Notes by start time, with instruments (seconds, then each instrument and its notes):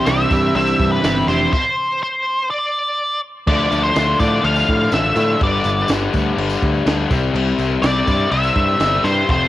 0.05 picked electric bass C2, distorted electric guitar C3 G3 C4 E4, clean electric guitar C3 E3 C4 D4 G4, lead electric guitar E5, snare, open hi-hat, tambourine
0.31 picked electric bass G2, distorted electric guitar C3 G3 C4 E4, clean electric guitar C3 E3 C4 D4 G4, kick, open hi-hat, tambourine
0.55 picked electric bass C2, clean electric guitar C3 E3 C4 D4 G4, distorted electric guitar C3 G3 C4 E4, lead electric guitar E5, open hi-hat, tambourine
0.67 tambourine
0.80 picked electric bass G2, kick, open hi-hat
0.92 lead electric guitar B4, tambourine
1.03 picked electric bass G1, distorted electric guitar C3 G3 C4 E4, clean electric guitar C3 E3 C4 D4 G4, snare, open hi-hat, tambourine
1.17 tambourine
1.27 picked electric bass F1, clean electric guitar C3 E3 C4 D4 G4, distorted electric guitar C3 G3 C4 E4, lead electric guitar C5, open hi-hat
1.41 tambourine
1.53 lead electric guitar C5, kick, crash
2.03 lead electric guitar C5
2.50 lead electric guitar D5
3.47 picked electric bass D2, distorted electric guitar D3 F3 A3 D4, lead electric guitar D5, kick, crash, tambourine
3.60 tambourine
3.72 picked electric bass D2, tambourine, crash
3.83 lead electric guitar C5, tambourine
3.96 picked electric bass D2, distorted electric guitar D3 F3 A3 D4, snare, tambourine, crash
4.20 picked electric bass A2, distorted electric guitar D3 F3 A3 D4, lead electric guitar D5, kick, tambourine, crash
4.43 picked electric bass D2, distorted electric guitar D3 F3 A3 D4, lead electric guitar F5, tambourine, crash
4.56 tambourine
4.69 picked electric bass A2, kick, crash
4.80 tambourine
4.92 picked electric bass A1, distorted electric guitar D3 F3 A3 D4, lead electric guitar E5, snare, tambourine, crash
5.16 picked electric bass A2, distorted electric guitar D3 F3 A3 D4, tambourine, crash
5.28 tambourine
5.40 picked electric bass G1, distorted electric guitar G2 D3 G3 B3 D4, lead electric guitar D5, kick, tambourine, crash
5.52 tambourine
5.64 picked electric bass G1, tambourine, crash
5.88 picked electric bass G1, distorted electric guitar G2 D3 G3 B3 D4, snare, tambourine, crash
6.13 picked electric bass D2, distorted electric guitar G2 D3 G3 B3 D4, kick, tambourine, crash
6.26 tambourine
6.37 picked electric bass G1, distorted electric guitar G2 D3 G3 B3 D4, tambourine, crash
6.50 tambourine
6.63 picked electric bass D2, kick, crash
6.74 tambourine
6.86 picked electric bass D2, distorted electric guitar G2 D3 G3 B3 D4, snare, tambourine, crash
7.11 picked electric bass C2, distorted electric guitar C3 G3 C4 E4, kick, tambourine, crash
7.23 tambourine
7.34 picked electric bass C2, distorted electric guitar C3 G3 C4 E4, tambourine, crash
7.47 tambourine
7.58 picked electric bass C2, tambourine, crash
7.71 tambourine
7.82 picked electric bass C2, distorted electric guitar C3 G3 C4 E4, lead electric guitar D5, snare, tambourine, crash
8.07 picked electric bass G2, distorted electric guitar C3 G3 C4 E4, kick, tambourine, crash
8.20 tambourine
8.31 picked electric bass C2, distorted electric guitar C3 G3 C4 E4, lead electric guitar E5, tambourine, crash
8.43 tambourine
8.55 picked electric bass G2, kick, crash
8.68 tambourine
8.80 picked electric bass G1, distorted electric guitar C3 G3 C4 E4, snare, tambourine, crash
8.93 tambourine
9.04 picked electric bass G2, distorted electric guitar C3 G3 C4 E4, lead electric guitar C5, tambourine, crash
9.28 picked electric bass F1, distorted electric guitar F2 C3 F3 A3 C4, lead electric guitar C5, kick, tambourine, crash
9.41 tambourine